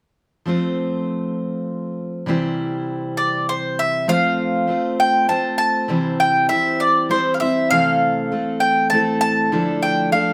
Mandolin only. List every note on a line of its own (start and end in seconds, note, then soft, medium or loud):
3.17 3.46 D5 medium
3.49 3.80 C5 medium
3.79 4.09 E5 medium
4.09 4.99 F5 medium
5.00 5.28 G5 medium
5.29 5.57 A5 medium
5.58 6.20 A5 medium
6.20 6.49 G5 medium
6.49 6.81 E5 medium
6.80 7.10 D5 medium
7.11 7.32 C5 medium
7.34 7.40 F5 medium
7.40 7.69 E5 medium
7.71 8.57 F5 medium
8.60 8.89 G5 medium
8.90 9.20 A5 medium
9.21 9.82 A5 medium
9.82 10.12 G5 medium
10.12 10.33 F5 medium